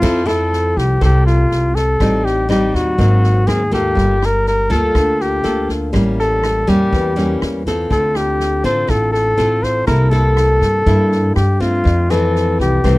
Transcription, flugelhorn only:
0.00 0.28 F4 medium
0.27 0.79 A4 medium
0.78 1.01 G4 medium
1.04 1.25 G4 medium
1.26 1.77 F4 medium
1.75 2.26 A4 medium
2.25 2.49 G4 medium
2.51 2.76 G4 medium
2.75 3.49 F#4 medium
3.47 3.72 G#4 medium
3.73 4.27 G4 medium
4.26 4.48 A#4 medium
4.48 4.73 A#4 loud
4.72 5.23 A4 medium
5.22 5.70 G4 medium
6.20 6.71 A4 medium
6.69 7.42 G4 medium
7.92 8.18 A4 medium
8.16 8.65 G4 medium
8.65 8.91 C5 medium
8.90 9.12 A4 medium
9.13 9.65 A4 loud
9.64 9.87 C5 medium
9.87 10.12 A#4 medium
10.10 11.34 A4 medium
11.36 11.62 G4 medium
11.61 12.12 F4 medium
12.11 12.60 A4 medium
12.61 12.98 G4 medium

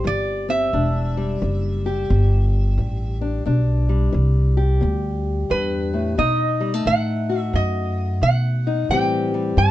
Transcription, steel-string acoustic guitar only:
0.00 1.17 G3 medium
0.00 0.47 C4 medium
0.00 0.73 G4 medium
0.04 0.68 E3 medium
0.49 0.70 C4 medium
0.73 1.36 E2 medium
0.73 3.20 D4 medium
1.17 3.88 G3 medium
1.42 2.05 E3 medium
1.86 3.43 G4 medium
2.10 2.73 B2 medium
2.78 3.41 E3 medium
3.21 3.43 D4 medium
3.45 4.09 E2 medium
3.45 6.15 D4 medium
3.89 6.18 G3 medium
4.12 4.76 E3 medium
4.57 6.15 G4 medium
4.81 5.44 B2 medium
5.50 5.93 G2 medium
5.93 6.17 A2 medium
6.18 6.81 B2 medium
6.18 8.65 D#4 medium
6.60 6.74 G3 medium
6.74 8.90 A3 medium
6.86 7.49 D#3 medium
7.29 8.87 F#4 medium
7.54 8.17 F#2 medium
8.22 8.85 D#3 medium
8.67 8.88 D#4 medium
8.90 9.53 A2 medium
8.90 9.57 E3 medium
8.90 9.34 G3 medium
8.90 9.71 C4 medium
8.90 9.71 G4 medium
9.34 9.71 G3 medium
9.57 9.71 E3 medium

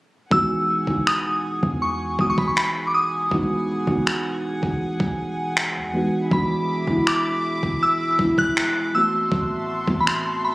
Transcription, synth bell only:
0.32 1.03 E6 loud
1.07 1.84 D#6 loud
1.82 2.21 C#6 medium
2.21 2.29 D#6 medium
2.30 2.39 C#6 medium
2.38 2.47 B5 medium
2.48 2.57 C#6 medium
2.57 2.88 B5 medium
2.87 2.94 D6 medium
2.94 5.15 D#6 medium
6.33 7.09 B5 medium
7.08 7.84 D6 medium
7.83 8.34 E6 medium
8.39 8.96 F#6 loud
8.95 10.03 E6 loud
10.00 10.07 B5 medium
10.07 10.42 C6 medium
10.45 10.55 B5 medium

